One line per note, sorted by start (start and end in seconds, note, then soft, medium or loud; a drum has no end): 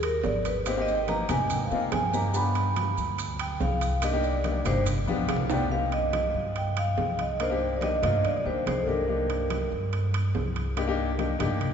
0.00 0.20 D#2 medium
0.00 0.24 A#4 medium
0.00 high conga soft
0.00 high timbale medium
0.00 maracas soft
0.24 1.23 G#1 medium
0.24 0.45 D5 medium
0.24 high conga medium
0.24 low timbale medium
0.24 maracas soft
0.45 0.66 B4 medium
0.45 high conga soft
0.45 high timbale medium
0.45 maracas medium
0.66 0.73 A#3 medium
0.66 0.74 C4 medium
0.66 0.74 D#4 medium
0.66 0.74 G4 medium
0.66 0.81 C5 medium
0.66 high conga soft
0.66 high timbale medium
0.66 maracas medium
0.76 0.99 A#3 medium
0.76 0.99 C4 medium
0.76 0.99 D#4 medium
0.76 0.99 G4 loud
0.82 0.95 D#5 loud
0.87 high conga soft
0.87 maracas soft
0.95 1.08 G5 medium
1.07 1.23 A#3 medium
1.07 1.23 C4 medium
1.07 1.23 D#4 medium
1.07 1.23 G4 medium
1.07 1.29 A#5 loud
1.07 high conga medium
1.07 high timbale medium
1.07 low timbale medium
1.07 maracas soft
1.29 1.68 G#2 loud
1.29 1.58 A#3 medium
1.29 1.59 C4 medium
1.29 1.59 D#4 medium
1.29 1.59 G4 medium
1.29 1.50 G#5 medium
1.29 high conga medium
1.29 low conga medium
1.29 high timbale medium
1.29 maracas medium
1.50 1.65 G5 medium
1.50 high conga soft
1.50 low conga medium
1.50 high timbale medium
1.50 maracas medium
1.66 1.79 F5 medium
1.71 1.91 G#2 medium
1.71 2.01 A#3 medium
1.71 2.01 C4 medium
1.71 2.01 D#4 medium
1.71 2.01 F4 medium
1.71 high conga soft
1.71 maracas soft
1.80 1.93 G5 medium
1.92 2.92 G2 medium
1.92 2.14 G#5 medium
1.92 high conga medium
1.92 high timbale loud
1.92 low timbale medium
1.92 maracas soft
2.13 2.28 A#3 medium
2.13 2.28 C4 medium
2.13 2.28 D#4 medium
2.13 2.28 G4 medium
2.13 2.35 A#5 medium
2.13 maracas medium
2.33 2.93 B3 medium
2.33 2.93 D4 medium
2.33 2.93 F4 medium
2.33 2.94 G4 medium
2.33 3.15 B5 loud
2.33 high conga soft
2.33 maracas medium
2.55 high conga soft
2.55 high timbale medium
2.55 maracas soft
2.76 high conga medium
2.76 high timbale medium
2.76 low timbale medium
2.76 maracas soft
2.97 3.57 D2 loud
2.97 maracas medium
3.18 high conga soft
3.18 high timbale medium
3.18 maracas loud
3.39 3.61 G5 medium
3.39 high conga soft
3.39 high timbale loud
3.39 maracas soft
3.60 4.60 C2 loud
3.60 4.01 F5 medium
3.60 high conga medium
3.60 low timbale medium
3.60 maracas soft
3.81 high conga soft
3.81 high timbale medium
3.81 maracas medium
4.02 4.10 A#3 medium
4.02 4.10 D4 medium
4.02 4.10 D#4 medium
4.02 4.11 G4 medium
4.02 4.24 D#5 medium
4.02 high conga soft
4.02 high timbale loud
4.02 maracas medium
4.12 4.35 A#3 medium
4.12 4.35 D4 medium
4.12 4.35 D#4 medium
4.12 4.36 G4 loud
4.23 4.63 D5 medium
4.23 high conga soft
4.23 maracas soft
4.44 4.59 A#3 medium
4.44 4.60 D4 medium
4.44 4.60 D#4 medium
4.44 4.60 G4 medium
4.44 high conga medium
4.44 high timbale medium
4.44 low timbale medium
4.44 maracas soft
4.65 5.05 G1 medium
4.65 4.87 A#3 medium
4.65 4.87 D4 medium
4.65 4.87 D#4 medium
4.65 4.88 G4 medium
4.65 4.79 C5 loud
4.65 high conga medium
4.65 low conga medium
4.65 high timbale medium
4.65 maracas medium
4.86 high conga soft
4.86 low conga medium
4.86 high timbale medium
4.86 maracas medium
5.07 5.28 B1 medium
5.07 5.37 B3 medium
5.07 5.38 D4 medium
5.07 5.38 F4 medium
5.07 5.38 G4 loud
5.07 high conga loud
5.07 maracas soft
5.29 6.28 C2 medium
5.29 5.49 F5 medium
5.29 high timbale loud
5.29 low timbale medium
5.29 maracas soft
5.36 low conga medium
5.50 5.65 B3 medium
5.50 5.65 D4 medium
5.50 5.65 F4 medium
5.50 5.66 G4 loud
5.50 5.70 D5 medium
5.50 5.60 G5 loud
5.50 low conga medium
5.50 high timbale medium
5.50 maracas medium
5.71 6.30 A#3 medium
5.71 6.30 C4 medium
5.71 6.31 D#4 medium
5.71 6.31 G4 medium
5.71 5.81 F5 loud
5.71 high conga soft
5.92 6.32 D#5 medium
5.92 high conga soft
5.92 high timbale medium
6.13 high conga medium
6.13 high timbale medium
6.13 low timbale medium
6.34 6.94 G2 medium
6.55 6.67 G5 medium
6.55 high conga soft
6.55 high timbale medium
6.77 7.21 F5 medium
6.77 high conga soft
6.77 high timbale loud
6.97 7.97 C2 medium
6.97 high conga medium
6.97 low timbale medium
7.19 7.41 D#5 medium
7.19 high conga soft
7.19 high timbale medium
7.39 7.47 A#3 medium
7.39 7.47 D4 medium
7.39 7.47 D#4 medium
7.39 7.48 A#4 medium
7.39 7.77 C5 medium
7.39 high conga soft
7.39 high timbale medium
7.50 7.72 A#3 medium
7.50 7.73 D4 medium
7.50 7.73 D#4 medium
7.50 7.73 G4 loud
7.61 high conga soft
7.76 7.83 D5 medium
7.81 7.96 A#3 medium
7.81 7.97 D4 medium
7.81 7.97 D#4 medium
7.81 7.97 G4 medium
7.81 8.26 D#5 loud
7.81 high conga medium
7.81 high timbale medium
7.81 low timbale medium
8.02 8.42 G2 medium
8.02 8.32 A#3 medium
8.02 8.32 D4 medium
8.02 8.33 D#4 medium
8.02 8.33 F4 medium
8.02 high conga medium
8.02 low conga medium
8.02 high timbale medium
8.24 8.35 D5 medium
8.24 high conga soft
8.24 high timbale medium
8.45 8.65 D2 medium
8.45 8.74 A#3 medium
8.45 8.75 D4 medium
8.45 8.75 D#4 medium
8.45 8.75 G4 medium
8.45 8.56 C5 medium
8.45 high conga soft
8.66 9.65 C2 medium
8.66 8.80 C5 medium
8.66 high conga medium
8.66 high timbale medium
8.66 low timbale medium
8.82 8.88 A4 medium
8.87 9.02 A#3 medium
8.87 9.02 D4 medium
8.87 9.02 D#4 medium
8.87 9.03 G4 medium
8.87 9.68 A#4 medium
8.87 high conga medium
9.08 9.67 A#3 medium
9.08 9.67 D4 medium
9.08 9.68 D#4 medium
9.08 9.68 G4 medium
9.08 high conga soft
9.29 high conga soft
9.29 high timbale medium
9.50 high conga medium
9.50 high timbale medium
9.50 low timbale medium
9.72 10.31 G2 loud
9.93 high conga soft
9.93 high timbale medium
10.14 high conga soft
10.14 high timbale loud
10.35 11.34 C2 medium
10.35 high conga medium
10.35 low timbale medium
10.56 high conga soft
10.56 high timbale medium
10.77 10.84 A#3 medium
10.77 10.84 D4 medium
10.77 10.85 D#4 medium
10.77 10.85 G4 loud
10.77 high conga soft
10.77 high timbale loud
10.87 11.09 A#3 loud
10.87 11.10 D4 medium
10.87 11.10 D#4 medium
10.87 11.10 G4 loud
10.98 high conga soft
11.18 11.33 A#3 medium
11.18 11.33 D4 medium
11.18 11.34 D#4 medium
11.18 11.34 G4 medium
11.18 high conga medium
11.18 high timbale medium
11.18 low timbale medium
11.39 11.74 G2 medium
11.39 11.69 A#3 medium
11.39 11.69 D4 medium
11.39 11.69 D#4 medium
11.39 11.70 G4 loud
11.39 high conga medium
11.39 low conga medium
11.39 high timbale medium
11.61 high conga soft
11.61 low conga medium
11.61 high timbale medium